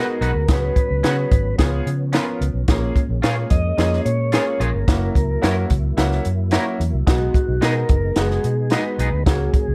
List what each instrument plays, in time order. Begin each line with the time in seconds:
Already playing: tonewheel organ G#3 B3 F#4 A#4, upright piano B3 D#4 F#4 G#4
0.21 fingered electric bass B1, clean electric guitar D#4 F#4 B4, closed hi-hat
0.34 fingered electric bass D2
0.48 tonewheel organ F#3 C#4 B4, upright piano B3 C#4 F#4 G#4, kick, snare, closed hi-hat
0.76 kick, closed hi-hat
0.90 fingered electric bass C#2
1.03 fingered electric bass C#3, upright piano B3 C#4 F#4 G#4, clean electric guitar C#4 F#4 B4, snare, closed hi-hat
1.31 fingered electric bass G#1, kick, closed hi-hat
1.58 fingered electric bass C#2, tonewheel organ F3, upright piano B3 C#4 F4 G#4, kick, snare, closed hi-hat
1.86 fingered electric bass C#3, closed hi-hat
2.13 upright piano B3 C#4 F4 A#4, clean electric guitar C#4 F4 B4, snare, closed hi-hat
2.41 fingered electric bass C#2, closed hi-hat
2.54 fingered electric bass B1
2.68 fingered electric bass A#1, tonewheel organ G#3 A#3 C#4, upright piano A#3 C#4 F4 G#4, kick, snare, closed hi-hat
2.96 kick, closed hi-hat
3.09 fingered electric bass A#1
3.22 fingered electric bass A#2, upright piano A#3 C#4 F4 G#4, clean electric guitar F4 G#4 C#5, tonewheel organ F5, snare, closed hi-hat
3.50 fingered electric bass F2, tonewheel organ D#5, kick, closed hi-hat
3.77 fingered electric bass F2, upright piano A#3 C#4 F4 G#4, snare, closed hi-hat
3.93 snare
4.05 fingered electric bass A#2, tonewheel organ C#5, closed hi-hat
4.32 upright piano A#3 C#4 F4 G#4, clean electric guitar F4 G#4 C#5, snare, closed hi-hat
4.60 fingered electric bass A#1, clean electric guitar F4 G#4 C#5, tonewheel organ A#4, closed hi-hat
4.74 fingered electric bass G1
4.88 fingered electric bass F#1, tonewheel organ F#3 E4, upright piano A#3 C#4 E4 F#4, kick, snare, closed hi-hat
5.15 fingered electric bass C#2, kick, closed hi-hat
5.42 fingered electric bass F#2, upright piano A#3 C#4 E4 F#4, clean electric guitar E4 A#4 C#5, snare, closed hi-hat
5.70 fingered electric bass C#2, kick, closed hi-hat
5.97 fingered electric bass C#2, upright piano A#3 C#4 E4 F#4, snare, closed hi-hat
6.12 snare
6.25 fingered electric bass F#2, closed hi-hat
6.51 upright piano A#3 C#4 E4 F#4, clean electric guitar E4 A#4 C#5, snare, closed hi-hat
6.80 fingered electric bass E2, closed hi-hat
6.93 fingered electric bass C2
7.07 fingered electric bass B1, upright piano G#3 B3 D#4 F#4, tonewheel organ G#3 B3 D#4 F#4, kick, snare, closed hi-hat
7.34 kick, closed hi-hat
7.48 fingered electric bass B1
7.61 fingered electric bass B2, upright piano G#3 B3 D#4 F#4, clean electric guitar B3 D#4 G#4, tonewheel organ A#4, snare, closed hi-hat
7.89 fingered electric bass F#1, kick, closed hi-hat
8.16 fingered electric bass F#1, upright piano G#3 B3 D#4 F#4, snare, closed hi-hat
8.20 tonewheel organ G#4
8.31 snare
8.44 fingered electric bass B2, closed hi-hat
8.70 upright piano G#3 B3 D#4 F#4, clean electric guitar B3 D#4 G#4, tonewheel organ B4, snare, closed hi-hat
8.99 fingered electric bass B1, clean electric guitar B3 D#4 G#4, closed hi-hat
9.12 fingered electric bass D2
9.26 fingered electric bass C#2, upright piano F#3 A#3 C#4 F#4, tonewheel organ F#3 A#3 C#4 G#4, kick, snare, closed hi-hat
9.54 kick, closed hi-hat
9.68 fingered electric bass C#2